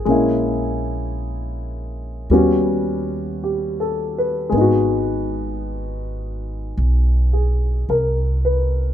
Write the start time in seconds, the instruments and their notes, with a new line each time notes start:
Already playing: grand piano G#4
0.05 upright bass A#1, grand piano G#3 A#3 C#4
0.11 grand piano E4
2.30 upright bass D#2, grand piano G3 B3 C#4 F#4
3.44 grand piano G4
3.80 grand piano A4
4.18 grand piano B4
4.49 upright bass G#1, grand piano G#3 B3
4.57 grand piano D#4 F#4
6.77 upright bass B1
7.33 grand piano G#4
7.89 upright bass C2, grand piano A#4
8.45 grand piano B4